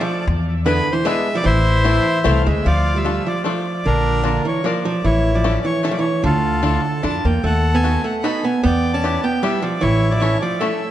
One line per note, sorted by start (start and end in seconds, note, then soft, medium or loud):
0.01 0.25 F3 medium
0.01 0.26 D5 medium
0.27 0.79 E2 loud
0.66 0.91 D3 medium
0.66 0.87 B3 medium
0.66 0.87 D4 medium
0.66 0.88 E4 medium
0.66 0.88 G#4 medium
0.66 0.93 B4 loud
0.66 0.88 B4 medium
0.92 1.05 E3 medium
0.92 1.06 C5 medium
1.05 1.34 G#3 loud
1.05 1.27 B3 medium
1.05 1.27 D4 medium
1.05 1.27 E4 medium
1.05 1.27 G#4 medium
1.05 1.27 B4 medium
1.05 1.37 E5 loud
1.35 1.43 F3 medium
1.35 1.45 D5 loud
1.44 1.97 A1 loud
1.44 2.42 E3 medium
1.44 2.43 E4 medium
1.44 2.43 C5 loud
1.84 2.06 A3 medium
1.84 2.06 C4 medium
1.84 2.06 E4 medium
1.84 2.06 A4 medium
1.84 2.06 C5 medium
2.24 2.44 C2 medium
2.24 2.46 A3 medium
2.24 2.45 A3 medium
2.24 2.46 C4 medium
2.24 2.46 E4 medium
2.24 2.47 A4 medium
2.24 2.47 C5 medium
2.24 2.48 F5 medium
2.46 2.64 D2 medium
2.46 2.65 G#3 medium
2.46 2.67 E5 medium
2.66 3.18 D2 medium
2.66 2.95 F3 medium
2.66 3.23 F4 medium
2.66 2.98 D5 medium
2.96 3.25 G3 medium
2.96 3.28 E5 medium
3.04 3.26 A3 soft
3.04 3.27 D4 medium
3.04 3.27 F4 medium
3.04 3.27 A4 medium
3.26 3.45 F3 medium
3.26 3.43 D5 medium
3.44 3.83 F3 medium
3.44 3.66 A3 medium
3.44 3.66 D4 medium
3.44 3.67 F4 medium
3.44 3.67 A4 medium
3.44 3.87 D5 medium
3.86 4.37 A#1 medium
3.86 4.23 D3 medium
3.86 4.42 D4 medium
3.86 4.24 A#4 loud
4.24 4.44 D3 medium
4.24 4.45 A#3 medium
4.24 4.46 D4 medium
4.24 4.46 F4 soft
4.24 4.46 A#4 medium
4.24 4.47 A#4 medium
4.45 4.63 E3 medium
4.45 4.66 C#5 medium
4.64 4.84 F3 medium
4.64 4.86 A#3 medium
4.64 4.86 D4 medium
4.64 4.86 F4 soft
4.64 4.86 A#4 medium
4.64 4.85 D5 medium
4.85 5.03 F3 medium
4.85 5.06 D5 medium
5.04 5.56 A1 medium
5.04 5.32 E3 medium
5.04 5.61 E4 medium
5.04 5.36 C#5 medium
5.35 5.63 F3 medium
5.35 5.66 D5 medium
5.44 5.65 A3 medium
5.44 5.65 C#4 medium
5.44 5.65 E4 medium
5.44 5.65 A4 medium
5.65 5.82 E3 medium
5.65 5.84 C#5 loud
5.83 5.91 E3 medium
5.83 6.04 A3 medium
5.83 6.04 C#4 medium
5.83 6.05 E4 medium
5.83 6.05 A4 medium
5.83 5.91 C#5 medium
5.91 5.98 F3 medium
5.91 5.99 D5 medium
5.99 6.22 E3 medium
5.99 6.22 C#5 medium
6.24 6.76 D2 loud
6.24 6.61 D3 medium
6.24 6.81 F4 medium
6.24 6.64 A4 medium
6.63 7.00 D3 medium
6.63 6.84 D4 medium
6.63 6.84 E4 medium
6.63 6.84 F4 medium
6.63 6.84 A4 medium
6.63 7.06 A4 medium
7.03 7.22 F2 medium
7.03 7.23 D4 medium
7.03 7.24 D4 medium
7.03 7.24 E4 medium
7.03 7.25 F4 medium
7.03 7.25 A4 medium
7.03 7.26 A5 medium
7.25 7.42 E2 medium
7.25 7.43 A#3 medium
7.25 7.45 G5 medium
7.43 7.96 D#2 medium
7.43 7.72 A3 medium
7.43 8.01 A4 medium
7.43 7.76 F#5 medium
7.75 8.03 B3 medium
7.75 8.06 G#5 medium
7.84 8.05 B3 medium
7.84 8.05 D#4 medium
7.84 8.05 F#4 medium
7.84 8.05 A4 medium
8.04 8.22 A3 medium
8.04 8.24 F#5 medium
8.23 8.45 B3 medium
8.23 8.43 D#4 medium
8.23 8.45 D#4 medium
8.23 8.45 F#4 soft
8.23 8.45 A4 medium
8.23 8.45 B5 medium
8.44 8.62 B3 medium
8.44 8.62 G#5 medium
8.64 9.16 E2 medium
8.64 8.92 B3 loud
8.64 9.21 D5 medium
8.64 8.92 G5 medium
8.93 9.22 C#4 medium
8.93 9.25 A5 medium
9.04 9.24 B3 medium
9.04 9.24 D4 medium
9.04 9.25 E4 medium
9.04 9.25 G4 medium
9.24 9.42 B3 medium
9.24 9.43 G5 medium
9.43 9.62 G3 medium
9.43 9.64 B3 medium
9.43 9.64 D4 soft
9.43 9.64 E4 medium
9.43 9.64 G4 medium
9.43 9.65 E5 medium
9.62 9.80 F3 medium
9.62 9.83 D5 medium
9.81 10.34 A1 loud
9.81 10.10 E3 medium
9.81 10.38 E4 medium
9.81 10.13 C#5 loud
10.11 10.21 F3 medium
10.11 10.21 D5 medium
10.19 10.41 E3 medium
10.19 10.42 A3 medium
10.19 10.42 C#4 medium
10.19 10.43 E4 medium
10.19 10.43 A4 medium
10.19 10.41 C#5 loud
10.41 10.60 F3 medium
10.41 10.61 D5 medium
10.59 10.89 A3 medium
10.59 10.82 A3 medium
10.59 10.82 C#4 medium
10.59 10.82 E4 medium
10.59 10.82 A4 medium
10.59 10.91 E5 medium